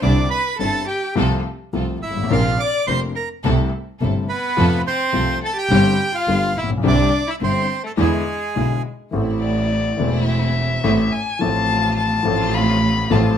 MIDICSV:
0, 0, Header, 1, 6, 480
1, 0, Start_track
1, 0, Key_signature, 0, "major"
1, 0, Tempo, 568720
1, 23, Time_signature, 4, 2, 24, 8
1, 7710, Key_signature, 0, "minor"
1, 11290, End_track
2, 0, Start_track
2, 0, Title_t, "Bandoneon"
2, 0, Program_c, 0, 23
2, 23, Note_on_c, 0, 74, 91
2, 248, Note_off_c, 0, 74, 0
2, 259, Note_on_c, 0, 83, 89
2, 486, Note_off_c, 0, 83, 0
2, 506, Note_on_c, 0, 81, 87
2, 731, Note_off_c, 0, 81, 0
2, 740, Note_on_c, 0, 79, 73
2, 968, Note_off_c, 0, 79, 0
2, 1709, Note_on_c, 0, 76, 72
2, 1956, Note_off_c, 0, 76, 0
2, 1959, Note_on_c, 0, 77, 88
2, 2195, Note_on_c, 0, 86, 86
2, 2201, Note_off_c, 0, 77, 0
2, 2414, Note_off_c, 0, 86, 0
2, 2424, Note_on_c, 0, 84, 84
2, 2532, Note_off_c, 0, 84, 0
2, 2666, Note_on_c, 0, 82, 69
2, 2774, Note_off_c, 0, 82, 0
2, 3622, Note_on_c, 0, 71, 86
2, 4067, Note_off_c, 0, 71, 0
2, 4112, Note_on_c, 0, 72, 99
2, 4552, Note_off_c, 0, 72, 0
2, 4603, Note_on_c, 0, 81, 82
2, 4704, Note_off_c, 0, 81, 0
2, 4711, Note_on_c, 0, 79, 103
2, 5193, Note_on_c, 0, 77, 95
2, 5199, Note_off_c, 0, 79, 0
2, 5555, Note_off_c, 0, 77, 0
2, 5555, Note_on_c, 0, 76, 69
2, 5659, Note_off_c, 0, 76, 0
2, 5802, Note_on_c, 0, 74, 94
2, 6160, Note_off_c, 0, 74, 0
2, 6162, Note_on_c, 0, 76, 81
2, 6210, Note_off_c, 0, 76, 0
2, 6277, Note_on_c, 0, 72, 80
2, 6603, Note_off_c, 0, 72, 0
2, 6634, Note_on_c, 0, 69, 67
2, 6685, Note_off_c, 0, 69, 0
2, 6763, Note_on_c, 0, 68, 71
2, 7447, Note_off_c, 0, 68, 0
2, 11290, End_track
3, 0, Start_track
3, 0, Title_t, "Violin"
3, 0, Program_c, 1, 40
3, 14, Note_on_c, 1, 62, 77
3, 243, Note_off_c, 1, 62, 0
3, 263, Note_on_c, 1, 71, 73
3, 489, Note_off_c, 1, 71, 0
3, 492, Note_on_c, 1, 69, 80
3, 723, Note_off_c, 1, 69, 0
3, 743, Note_on_c, 1, 67, 69
3, 970, Note_off_c, 1, 67, 0
3, 1718, Note_on_c, 1, 64, 60
3, 1937, Note_off_c, 1, 64, 0
3, 1954, Note_on_c, 1, 65, 74
3, 2174, Note_off_c, 1, 65, 0
3, 2193, Note_on_c, 1, 74, 82
3, 2413, Note_off_c, 1, 74, 0
3, 2426, Note_on_c, 1, 72, 70
3, 2534, Note_off_c, 1, 72, 0
3, 2660, Note_on_c, 1, 70, 59
3, 2770, Note_off_c, 1, 70, 0
3, 3627, Note_on_c, 1, 59, 75
3, 4070, Note_off_c, 1, 59, 0
3, 4111, Note_on_c, 1, 60, 88
3, 4552, Note_off_c, 1, 60, 0
3, 4583, Note_on_c, 1, 69, 86
3, 4688, Note_off_c, 1, 69, 0
3, 4693, Note_on_c, 1, 67, 77
3, 5142, Note_off_c, 1, 67, 0
3, 5187, Note_on_c, 1, 65, 86
3, 5517, Note_off_c, 1, 65, 0
3, 5547, Note_on_c, 1, 64, 64
3, 5653, Note_off_c, 1, 64, 0
3, 5774, Note_on_c, 1, 62, 79
3, 6110, Note_off_c, 1, 62, 0
3, 6139, Note_on_c, 1, 64, 63
3, 6193, Note_off_c, 1, 64, 0
3, 6262, Note_on_c, 1, 60, 68
3, 6595, Note_off_c, 1, 60, 0
3, 6615, Note_on_c, 1, 57, 55
3, 6670, Note_off_c, 1, 57, 0
3, 6731, Note_on_c, 1, 56, 61
3, 7431, Note_off_c, 1, 56, 0
3, 7939, Note_on_c, 1, 74, 82
3, 8633, Note_off_c, 1, 74, 0
3, 8662, Note_on_c, 1, 76, 80
3, 9386, Note_on_c, 1, 80, 86
3, 9399, Note_off_c, 1, 76, 0
3, 9629, Note_on_c, 1, 81, 95
3, 9642, Note_off_c, 1, 80, 0
3, 10101, Note_off_c, 1, 81, 0
3, 10106, Note_on_c, 1, 81, 82
3, 10585, Note_on_c, 1, 83, 94
3, 10597, Note_off_c, 1, 81, 0
3, 11070, Note_on_c, 1, 81, 74
3, 11082, Note_off_c, 1, 83, 0
3, 11290, Note_off_c, 1, 81, 0
3, 11290, End_track
4, 0, Start_track
4, 0, Title_t, "String section"
4, 0, Program_c, 2, 48
4, 17, Note_on_c, 2, 60, 58
4, 17, Note_on_c, 2, 64, 71
4, 18, Note_on_c, 2, 62, 56
4, 223, Note_off_c, 2, 60, 0
4, 223, Note_off_c, 2, 64, 0
4, 224, Note_off_c, 2, 62, 0
4, 506, Note_on_c, 2, 60, 52
4, 509, Note_on_c, 2, 62, 47
4, 510, Note_on_c, 2, 64, 58
4, 709, Note_off_c, 2, 60, 0
4, 710, Note_off_c, 2, 62, 0
4, 711, Note_off_c, 2, 64, 0
4, 992, Note_on_c, 2, 65, 69
4, 994, Note_on_c, 2, 60, 78
4, 996, Note_on_c, 2, 69, 84
4, 1193, Note_off_c, 2, 65, 0
4, 1194, Note_off_c, 2, 60, 0
4, 1195, Note_off_c, 2, 69, 0
4, 1474, Note_on_c, 2, 65, 40
4, 1475, Note_on_c, 2, 60, 44
4, 1477, Note_on_c, 2, 69, 48
4, 1674, Note_off_c, 2, 60, 0
4, 1674, Note_off_c, 2, 65, 0
4, 1675, Note_off_c, 2, 69, 0
4, 1947, Note_on_c, 2, 60, 67
4, 1948, Note_on_c, 2, 62, 64
4, 1949, Note_on_c, 2, 70, 68
4, 2150, Note_off_c, 2, 60, 0
4, 2150, Note_off_c, 2, 62, 0
4, 2150, Note_off_c, 2, 70, 0
4, 2430, Note_on_c, 2, 60, 49
4, 2431, Note_on_c, 2, 62, 44
4, 2433, Note_on_c, 2, 70, 56
4, 2630, Note_off_c, 2, 60, 0
4, 2630, Note_off_c, 2, 62, 0
4, 2631, Note_off_c, 2, 70, 0
4, 2908, Note_on_c, 2, 60, 75
4, 2908, Note_on_c, 2, 64, 65
4, 2910, Note_on_c, 2, 69, 77
4, 3109, Note_off_c, 2, 60, 0
4, 3109, Note_off_c, 2, 64, 0
4, 3110, Note_off_c, 2, 69, 0
4, 3387, Note_on_c, 2, 60, 45
4, 3388, Note_on_c, 2, 64, 41
4, 3390, Note_on_c, 2, 69, 50
4, 3588, Note_off_c, 2, 60, 0
4, 3588, Note_off_c, 2, 64, 0
4, 3589, Note_off_c, 2, 69, 0
4, 3858, Note_on_c, 2, 60, 58
4, 3861, Note_on_c, 2, 65, 67
4, 3863, Note_on_c, 2, 69, 74
4, 4061, Note_off_c, 2, 60, 0
4, 4063, Note_off_c, 2, 65, 0
4, 4064, Note_off_c, 2, 69, 0
4, 4339, Note_on_c, 2, 60, 55
4, 4343, Note_on_c, 2, 65, 48
4, 4343, Note_on_c, 2, 69, 53
4, 4541, Note_off_c, 2, 60, 0
4, 4543, Note_off_c, 2, 65, 0
4, 4543, Note_off_c, 2, 69, 0
4, 4820, Note_on_c, 2, 60, 77
4, 4820, Note_on_c, 2, 62, 72
4, 4822, Note_on_c, 2, 67, 86
4, 5022, Note_off_c, 2, 60, 0
4, 5022, Note_off_c, 2, 62, 0
4, 5023, Note_off_c, 2, 67, 0
4, 5294, Note_on_c, 2, 57, 44
4, 5297, Note_on_c, 2, 59, 38
4, 5300, Note_on_c, 2, 67, 48
4, 5497, Note_off_c, 2, 57, 0
4, 5498, Note_off_c, 2, 59, 0
4, 5500, Note_off_c, 2, 67, 0
4, 5770, Note_on_c, 2, 62, 59
4, 5772, Note_on_c, 2, 60, 63
4, 5772, Note_on_c, 2, 64, 62
4, 5975, Note_off_c, 2, 62, 0
4, 5976, Note_off_c, 2, 60, 0
4, 5976, Note_off_c, 2, 64, 0
4, 6248, Note_on_c, 2, 60, 48
4, 6250, Note_on_c, 2, 62, 43
4, 6251, Note_on_c, 2, 64, 52
4, 6454, Note_off_c, 2, 60, 0
4, 6455, Note_off_c, 2, 62, 0
4, 6456, Note_off_c, 2, 64, 0
4, 6733, Note_on_c, 2, 62, 63
4, 6735, Note_on_c, 2, 56, 70
4, 6739, Note_on_c, 2, 64, 82
4, 6939, Note_off_c, 2, 62, 0
4, 6940, Note_off_c, 2, 56, 0
4, 6942, Note_off_c, 2, 64, 0
4, 7222, Note_on_c, 2, 56, 41
4, 7222, Note_on_c, 2, 62, 38
4, 7222, Note_on_c, 2, 64, 46
4, 7428, Note_off_c, 2, 56, 0
4, 7428, Note_off_c, 2, 62, 0
4, 7428, Note_off_c, 2, 64, 0
4, 7703, Note_on_c, 2, 57, 68
4, 7705, Note_on_c, 2, 60, 61
4, 7709, Note_on_c, 2, 64, 72
4, 8393, Note_off_c, 2, 57, 0
4, 8394, Note_off_c, 2, 60, 0
4, 8396, Note_off_c, 2, 64, 0
4, 8427, Note_on_c, 2, 57, 80
4, 8429, Note_on_c, 2, 60, 81
4, 8431, Note_on_c, 2, 64, 100
4, 9112, Note_off_c, 2, 57, 0
4, 9113, Note_off_c, 2, 60, 0
4, 9114, Note_off_c, 2, 64, 0
4, 9154, Note_on_c, 2, 57, 72
4, 9154, Note_on_c, 2, 60, 55
4, 9154, Note_on_c, 2, 64, 66
4, 9353, Note_off_c, 2, 57, 0
4, 9353, Note_off_c, 2, 60, 0
4, 9353, Note_off_c, 2, 64, 0
4, 9623, Note_on_c, 2, 57, 68
4, 9624, Note_on_c, 2, 60, 59
4, 9625, Note_on_c, 2, 65, 76
4, 10306, Note_off_c, 2, 57, 0
4, 10306, Note_off_c, 2, 60, 0
4, 10307, Note_off_c, 2, 65, 0
4, 10343, Note_on_c, 2, 57, 93
4, 10344, Note_on_c, 2, 60, 82
4, 10349, Note_on_c, 2, 65, 104
4, 11024, Note_off_c, 2, 57, 0
4, 11024, Note_off_c, 2, 60, 0
4, 11027, Note_off_c, 2, 65, 0
4, 11062, Note_on_c, 2, 57, 68
4, 11065, Note_on_c, 2, 65, 71
4, 11066, Note_on_c, 2, 60, 61
4, 11262, Note_off_c, 2, 57, 0
4, 11263, Note_off_c, 2, 65, 0
4, 11264, Note_off_c, 2, 60, 0
4, 11290, End_track
5, 0, Start_track
5, 0, Title_t, "Upright piano"
5, 0, Program_c, 3, 0
5, 18, Note_on_c, 3, 55, 53
5, 21, Note_on_c, 3, 50, 60
5, 23, Note_on_c, 3, 48, 64
5, 24, Note_on_c, 3, 60, 55
5, 24, Note_on_c, 3, 64, 62
5, 25, Note_on_c, 3, 36, 70
5, 224, Note_off_c, 3, 55, 0
5, 225, Note_off_c, 3, 50, 0
5, 226, Note_off_c, 3, 48, 0
5, 227, Note_off_c, 3, 36, 0
5, 227, Note_off_c, 3, 60, 0
5, 227, Note_off_c, 3, 64, 0
5, 500, Note_on_c, 3, 43, 50
5, 500, Note_on_c, 3, 55, 39
5, 501, Note_on_c, 3, 50, 41
5, 501, Note_on_c, 3, 60, 41
5, 502, Note_on_c, 3, 31, 57
5, 503, Note_on_c, 3, 64, 49
5, 706, Note_off_c, 3, 43, 0
5, 706, Note_off_c, 3, 55, 0
5, 707, Note_off_c, 3, 31, 0
5, 707, Note_off_c, 3, 50, 0
5, 707, Note_off_c, 3, 60, 0
5, 708, Note_off_c, 3, 64, 0
5, 973, Note_on_c, 3, 48, 78
5, 977, Note_on_c, 3, 53, 61
5, 978, Note_on_c, 3, 36, 79
5, 981, Note_on_c, 3, 57, 60
5, 982, Note_on_c, 3, 65, 73
5, 1186, Note_off_c, 3, 36, 0
5, 1186, Note_off_c, 3, 48, 0
5, 1186, Note_off_c, 3, 53, 0
5, 1188, Note_off_c, 3, 57, 0
5, 1188, Note_off_c, 3, 65, 0
5, 1460, Note_on_c, 3, 36, 51
5, 1461, Note_on_c, 3, 48, 55
5, 1461, Note_on_c, 3, 53, 45
5, 1464, Note_on_c, 3, 57, 42
5, 1467, Note_on_c, 3, 65, 47
5, 1667, Note_off_c, 3, 36, 0
5, 1667, Note_off_c, 3, 48, 0
5, 1667, Note_off_c, 3, 53, 0
5, 1668, Note_off_c, 3, 57, 0
5, 1670, Note_off_c, 3, 65, 0
5, 1775, Note_on_c, 3, 31, 49
5, 1828, Note_on_c, 3, 32, 52
5, 1832, Note_off_c, 3, 31, 0
5, 1883, Note_on_c, 3, 33, 69
5, 1889, Note_off_c, 3, 32, 0
5, 1944, Note_on_c, 3, 53, 52
5, 1945, Note_on_c, 3, 48, 62
5, 1946, Note_off_c, 3, 33, 0
5, 1947, Note_on_c, 3, 34, 74
5, 1947, Note_on_c, 3, 58, 59
5, 1949, Note_on_c, 3, 46, 70
5, 1950, Note_on_c, 3, 62, 64
5, 2148, Note_off_c, 3, 48, 0
5, 2148, Note_off_c, 3, 53, 0
5, 2150, Note_off_c, 3, 34, 0
5, 2150, Note_off_c, 3, 58, 0
5, 2151, Note_off_c, 3, 46, 0
5, 2151, Note_off_c, 3, 62, 0
5, 2429, Note_on_c, 3, 48, 47
5, 2430, Note_on_c, 3, 41, 58
5, 2430, Note_on_c, 3, 53, 44
5, 2431, Note_on_c, 3, 29, 49
5, 2435, Note_on_c, 3, 62, 49
5, 2436, Note_on_c, 3, 58, 38
5, 2629, Note_off_c, 3, 48, 0
5, 2630, Note_off_c, 3, 29, 0
5, 2630, Note_off_c, 3, 41, 0
5, 2630, Note_off_c, 3, 53, 0
5, 2632, Note_off_c, 3, 62, 0
5, 2633, Note_off_c, 3, 58, 0
5, 2908, Note_on_c, 3, 48, 76
5, 2910, Note_on_c, 3, 55, 68
5, 2911, Note_on_c, 3, 57, 67
5, 2912, Note_on_c, 3, 64, 73
5, 2914, Note_on_c, 3, 36, 79
5, 3110, Note_off_c, 3, 48, 0
5, 3110, Note_off_c, 3, 55, 0
5, 3110, Note_off_c, 3, 57, 0
5, 3111, Note_off_c, 3, 64, 0
5, 3112, Note_off_c, 3, 36, 0
5, 3385, Note_on_c, 3, 48, 51
5, 3386, Note_on_c, 3, 57, 42
5, 3387, Note_on_c, 3, 43, 56
5, 3390, Note_on_c, 3, 31, 57
5, 3390, Note_on_c, 3, 55, 45
5, 3390, Note_on_c, 3, 64, 55
5, 3586, Note_off_c, 3, 48, 0
5, 3587, Note_off_c, 3, 43, 0
5, 3587, Note_off_c, 3, 57, 0
5, 3589, Note_off_c, 3, 31, 0
5, 3589, Note_off_c, 3, 55, 0
5, 3589, Note_off_c, 3, 64, 0
5, 3854, Note_on_c, 3, 41, 65
5, 3856, Note_on_c, 3, 53, 72
5, 3857, Note_on_c, 3, 48, 59
5, 3857, Note_on_c, 3, 65, 71
5, 3859, Note_on_c, 3, 57, 58
5, 4059, Note_off_c, 3, 41, 0
5, 4061, Note_off_c, 3, 48, 0
5, 4061, Note_off_c, 3, 65, 0
5, 4062, Note_off_c, 3, 53, 0
5, 4062, Note_off_c, 3, 57, 0
5, 4327, Note_on_c, 3, 48, 55
5, 4330, Note_on_c, 3, 57, 41
5, 4333, Note_on_c, 3, 36, 49
5, 4333, Note_on_c, 3, 53, 43
5, 4336, Note_on_c, 3, 65, 55
5, 4537, Note_off_c, 3, 48, 0
5, 4537, Note_off_c, 3, 57, 0
5, 4538, Note_off_c, 3, 36, 0
5, 4538, Note_off_c, 3, 53, 0
5, 4540, Note_off_c, 3, 65, 0
5, 4817, Note_on_c, 3, 31, 80
5, 4818, Note_on_c, 3, 50, 70
5, 4820, Note_on_c, 3, 55, 66
5, 4821, Note_on_c, 3, 60, 61
5, 4822, Note_on_c, 3, 43, 79
5, 4822, Note_on_c, 3, 67, 70
5, 5020, Note_off_c, 3, 31, 0
5, 5021, Note_off_c, 3, 50, 0
5, 5022, Note_off_c, 3, 43, 0
5, 5022, Note_off_c, 3, 55, 0
5, 5022, Note_off_c, 3, 60, 0
5, 5023, Note_off_c, 3, 67, 0
5, 5296, Note_on_c, 3, 57, 41
5, 5299, Note_on_c, 3, 31, 51
5, 5300, Note_on_c, 3, 43, 60
5, 5300, Note_on_c, 3, 59, 45
5, 5301, Note_on_c, 3, 50, 49
5, 5301, Note_on_c, 3, 67, 51
5, 5498, Note_off_c, 3, 57, 0
5, 5500, Note_off_c, 3, 31, 0
5, 5500, Note_off_c, 3, 43, 0
5, 5501, Note_off_c, 3, 50, 0
5, 5501, Note_off_c, 3, 59, 0
5, 5501, Note_off_c, 3, 67, 0
5, 5597, Note_on_c, 3, 33, 54
5, 5653, Note_on_c, 3, 34, 49
5, 5657, Note_off_c, 3, 33, 0
5, 5715, Note_off_c, 3, 34, 0
5, 5718, Note_on_c, 3, 35, 65
5, 5766, Note_on_c, 3, 50, 58
5, 5769, Note_on_c, 3, 36, 76
5, 5770, Note_on_c, 3, 55, 57
5, 5771, Note_on_c, 3, 48, 77
5, 5773, Note_on_c, 3, 60, 59
5, 5774, Note_on_c, 3, 64, 60
5, 5778, Note_off_c, 3, 35, 0
5, 5973, Note_off_c, 3, 50, 0
5, 5975, Note_off_c, 3, 36, 0
5, 5975, Note_off_c, 3, 55, 0
5, 5976, Note_off_c, 3, 48, 0
5, 5977, Note_off_c, 3, 60, 0
5, 5977, Note_off_c, 3, 64, 0
5, 6255, Note_on_c, 3, 55, 43
5, 6257, Note_on_c, 3, 31, 55
5, 6258, Note_on_c, 3, 43, 57
5, 6258, Note_on_c, 3, 50, 44
5, 6258, Note_on_c, 3, 60, 43
5, 6258, Note_on_c, 3, 64, 51
5, 6458, Note_off_c, 3, 55, 0
5, 6459, Note_off_c, 3, 31, 0
5, 6459, Note_off_c, 3, 43, 0
5, 6459, Note_off_c, 3, 50, 0
5, 6459, Note_off_c, 3, 60, 0
5, 6459, Note_off_c, 3, 64, 0
5, 6729, Note_on_c, 3, 40, 82
5, 6730, Note_on_c, 3, 56, 60
5, 6731, Note_on_c, 3, 50, 65
5, 6732, Note_on_c, 3, 59, 60
5, 6734, Note_on_c, 3, 52, 80
5, 6734, Note_on_c, 3, 64, 69
5, 6937, Note_off_c, 3, 40, 0
5, 6938, Note_off_c, 3, 50, 0
5, 6938, Note_off_c, 3, 56, 0
5, 6939, Note_off_c, 3, 59, 0
5, 6940, Note_off_c, 3, 52, 0
5, 6940, Note_off_c, 3, 64, 0
5, 7225, Note_on_c, 3, 35, 49
5, 7225, Note_on_c, 3, 56, 43
5, 7226, Note_on_c, 3, 50, 46
5, 7226, Note_on_c, 3, 59, 40
5, 7229, Note_on_c, 3, 47, 54
5, 7229, Note_on_c, 3, 64, 51
5, 7429, Note_off_c, 3, 56, 0
5, 7430, Note_off_c, 3, 35, 0
5, 7430, Note_off_c, 3, 50, 0
5, 7430, Note_off_c, 3, 59, 0
5, 7432, Note_off_c, 3, 47, 0
5, 7432, Note_off_c, 3, 64, 0
5, 7688, Note_on_c, 3, 52, 55
5, 7701, Note_on_c, 3, 57, 55
5, 7705, Note_on_c, 3, 45, 65
5, 7707, Note_on_c, 3, 33, 67
5, 7710, Note_on_c, 3, 60, 53
5, 7722, Note_on_c, 3, 69, 64
5, 8386, Note_off_c, 3, 52, 0
5, 8392, Note_off_c, 3, 57, 0
5, 8394, Note_off_c, 3, 45, 0
5, 8395, Note_off_c, 3, 33, 0
5, 8397, Note_off_c, 3, 60, 0
5, 8403, Note_off_c, 3, 69, 0
5, 8415, Note_on_c, 3, 52, 64
5, 8428, Note_on_c, 3, 57, 57
5, 8433, Note_on_c, 3, 28, 65
5, 8434, Note_on_c, 3, 40, 64
5, 8440, Note_on_c, 3, 60, 55
5, 8452, Note_on_c, 3, 69, 67
5, 9106, Note_off_c, 3, 52, 0
5, 9113, Note_off_c, 3, 57, 0
5, 9115, Note_off_c, 3, 28, 0
5, 9116, Note_off_c, 3, 40, 0
5, 9119, Note_off_c, 3, 60, 0
5, 9124, Note_off_c, 3, 69, 0
5, 9145, Note_on_c, 3, 33, 81
5, 9145, Note_on_c, 3, 57, 63
5, 9146, Note_on_c, 3, 52, 66
5, 9147, Note_on_c, 3, 45, 84
5, 9149, Note_on_c, 3, 60, 63
5, 9152, Note_on_c, 3, 69, 67
5, 9348, Note_off_c, 3, 57, 0
5, 9349, Note_off_c, 3, 33, 0
5, 9349, Note_off_c, 3, 52, 0
5, 9350, Note_off_c, 3, 45, 0
5, 9351, Note_off_c, 3, 60, 0
5, 9352, Note_off_c, 3, 69, 0
5, 9613, Note_on_c, 3, 53, 63
5, 9626, Note_on_c, 3, 57, 54
5, 9630, Note_on_c, 3, 33, 66
5, 9630, Note_on_c, 3, 45, 69
5, 9634, Note_on_c, 3, 60, 61
5, 9649, Note_on_c, 3, 69, 65
5, 10301, Note_off_c, 3, 53, 0
5, 10308, Note_off_c, 3, 57, 0
5, 10310, Note_off_c, 3, 33, 0
5, 10310, Note_off_c, 3, 45, 0
5, 10311, Note_off_c, 3, 60, 0
5, 10319, Note_off_c, 3, 69, 0
5, 10321, Note_on_c, 3, 53, 60
5, 10333, Note_on_c, 3, 57, 58
5, 10338, Note_on_c, 3, 45, 73
5, 10340, Note_on_c, 3, 33, 76
5, 10343, Note_on_c, 3, 60, 54
5, 10355, Note_on_c, 3, 69, 75
5, 11012, Note_off_c, 3, 53, 0
5, 11019, Note_off_c, 3, 57, 0
5, 11021, Note_off_c, 3, 45, 0
5, 11022, Note_off_c, 3, 33, 0
5, 11024, Note_off_c, 3, 60, 0
5, 11030, Note_off_c, 3, 69, 0
5, 11058, Note_on_c, 3, 33, 83
5, 11059, Note_on_c, 3, 57, 66
5, 11060, Note_on_c, 3, 45, 82
5, 11060, Note_on_c, 3, 53, 66
5, 11063, Note_on_c, 3, 60, 66
5, 11066, Note_on_c, 3, 69, 72
5, 11259, Note_off_c, 3, 33, 0
5, 11260, Note_off_c, 3, 57, 0
5, 11261, Note_off_c, 3, 45, 0
5, 11261, Note_off_c, 3, 53, 0
5, 11262, Note_off_c, 3, 60, 0
5, 11263, Note_off_c, 3, 69, 0
5, 11290, End_track
6, 0, Start_track
6, 0, Title_t, "Double bass"
6, 0, Program_c, 4, 43
6, 22, Note_on_c, 4, 36, 89
6, 225, Note_off_c, 4, 36, 0
6, 511, Note_on_c, 4, 31, 53
6, 712, Note_off_c, 4, 31, 0
6, 992, Note_on_c, 4, 36, 77
6, 1193, Note_off_c, 4, 36, 0
6, 1465, Note_on_c, 4, 36, 55
6, 1669, Note_off_c, 4, 36, 0
6, 1706, Note_on_c, 4, 32, 55
6, 1942, Note_off_c, 4, 32, 0
6, 1947, Note_on_c, 4, 34, 89
6, 2149, Note_off_c, 4, 34, 0
6, 2426, Note_on_c, 4, 29, 52
6, 2628, Note_off_c, 4, 29, 0
6, 2906, Note_on_c, 4, 36, 92
6, 3108, Note_off_c, 4, 36, 0
6, 3384, Note_on_c, 4, 31, 61
6, 3586, Note_off_c, 4, 31, 0
6, 3869, Note_on_c, 4, 41, 86
6, 4067, Note_off_c, 4, 41, 0
6, 4342, Note_on_c, 4, 36, 59
6, 4542, Note_off_c, 4, 36, 0
6, 4807, Note_on_c, 4, 31, 78
6, 5015, Note_off_c, 4, 31, 0
6, 5294, Note_on_c, 4, 31, 54
6, 5497, Note_off_c, 4, 31, 0
6, 5530, Note_on_c, 4, 34, 52
6, 5763, Note_off_c, 4, 34, 0
6, 5768, Note_on_c, 4, 36, 93
6, 5974, Note_off_c, 4, 36, 0
6, 6254, Note_on_c, 4, 31, 51
6, 6457, Note_off_c, 4, 31, 0
6, 6733, Note_on_c, 4, 40, 83
6, 6939, Note_off_c, 4, 40, 0
6, 7227, Note_on_c, 4, 35, 55
6, 7431, Note_off_c, 4, 35, 0
6, 7705, Note_on_c, 4, 33, 85
6, 8394, Note_off_c, 4, 33, 0
6, 8438, Note_on_c, 4, 28, 85
6, 9117, Note_off_c, 4, 28, 0
6, 9156, Note_on_c, 4, 33, 79
6, 9354, Note_off_c, 4, 33, 0
6, 9630, Note_on_c, 4, 33, 80
6, 10310, Note_off_c, 4, 33, 0
6, 10347, Note_on_c, 4, 33, 99
6, 11026, Note_off_c, 4, 33, 0
6, 11067, Note_on_c, 4, 33, 82
6, 11264, Note_off_c, 4, 33, 0
6, 11290, End_track
0, 0, End_of_file